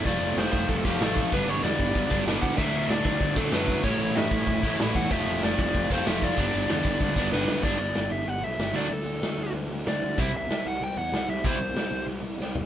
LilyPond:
<<
  \new Staff \with { instrumentName = "Lead electric guitar" } { \time 4/4 \key g \lydian \tempo 4 = 190 d''4 c''8 c''8 a'8 g'8 a'4 | b'8 cis''8 d''2 r8 fis''8 | e''4 d''8 d''4 a'8 b'4 | cis''4 e''2 r8 fis''8 |
e''4 d''8 d''4 c''8 e''8 d''8~ | d''4 d''2 b'4 | d''8 d''4 e''8 fis''8 e''4 d''8 | a'2 r4 d''4 |
e''8 e''4 fis''8 g''8 fis''4 e''8 | c''2 r2 | }
  \new Staff \with { instrumentName = "Distorted electric guitar" } { \time 4/4 \key g \lydian <f a c' f'>2~ <f a c' f'>8 <f a c' f'>8 <f a c' f'>4 | <g, d g b d'>2~ <g, d g b d'>8 <g, d g b d'>8 <g, d g b d'>4 | <d fis a d'>2~ <d fis a d'>8 <d fis a d'>8 <d fis a d'>4 | <a, e a cis' e'>2~ <a, e a cis' e'>8 <a, e a cis' e'>8 <a, e a cis' e'>4 |
<f a c' f'>2~ <f a c' f'>8 <f a c' f'>8 <f a c' f'>4 | <g, d g b d'>2~ <g, d g b d'>8 <g, d g b d'>8 <g, d g b d'>4 | <g, d g b d'>8 r2. <d fis a d'>8 | r1 |
<c g c' e'>8 r2. r8 | <c g c' e'>8 r2. r8 | }
  \new Staff \with { instrumentName = "Picked electric bass" } { \clef bass \time 4/4 \key g \lydian f,,8 f,,8 f,,8 f,,8 f,,8 f,,8 a,,4 | g,,8 g,,8 e,8 g,,8 d,8 g,,8 g,,8 d,8 | d,8 d,8 d,8 d,8 d,8 d,8 fis,4 | a,,8 a,,8 g,8 a,,8 e,,8 a,,8 a,,8 e,8 |
f,,8 f,,8 f,,8 f,,8 f,,8 f,,8 f,,4 | g,,8 g,,8 e,8 g,,8 d,8 g,,8 g,,8 d,8 | g,,8 g,,8 g,,8 g,,8 g,,8 b,,8 g,,8 d,8 | d,8 d,8 d,8 d,8 d,8 d,8 d,8 d,8 |
c,8 c,8 c,8 c,8 c,8 e,8 c,8 c,8 | c,8 c,8 c,8 c,8 c,8 c,8 c,8 fis,,8 | }
  \new DrumStaff \with { instrumentName = "Drums" } \drummode { \time 4/4 <hho bd>4 <hho sn>8 bd8 <hho bd>8 bd8 <hho sn>8 bd8 | <hho bd>4 <hho sn>8 bd8 <hho bd>8 bd8 <hho sn>8 bd8 | <cymc bd>4 <hho sn>8 bd8 <hho bd>8 bd8 <hho sn>8 bd8 | <hho bd>4 <hho sn>8 bd8 <hho bd>8 bd8 <hho sn>8 bd8 |
<hho bd>4 <hho sn>8 bd8 <hho bd>8 bd8 <hho sn>8 bd8 | <hho bd>4 <hho sn>8 bd8 <hho bd>8 bd8 sn8 sn8 | <cymc bd>4 <hho sn>4 hho4 <hho sn>4 | hho4 <hho sn>4 hho4 <hho sn>4 |
<hho bd>4 <hho sn>4 hho4 <hho sn>4 | <hho bd>4 <hho sn>4 hho4 sn8 tomfh8 | }
>>